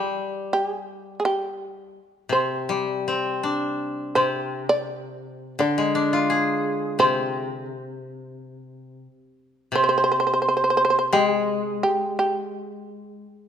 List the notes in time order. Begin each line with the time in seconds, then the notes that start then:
Already playing: G3 G4
0.53 G4
0.68 G#4
1.20 G#4
1.25 G4
2.29 C3 C5
2.69 G3
3.08 C4
3.30 G#4
3.43 D4
4.15 C3 C5
4.69 D5
5.59 D3 D5
5.78 G#3
5.95 D4
6.12 F4 C#5
6.25 C5
6.30 G#4
6.99 C3 C5
9.72 C3 C5
9.84 C5
9.89 C5
9.98 C5
10.04 C5
10.12 C5
10.20 C5
10.27 C5
10.34 C5
10.42 C5
10.48 C5
10.57 C5
10.64 C5
10.70 C5
10.77 C5
10.85 C5
10.90 C5
10.99 C5
11.13 G#3 G4
11.29 G#4
11.83 G4
12.19 G4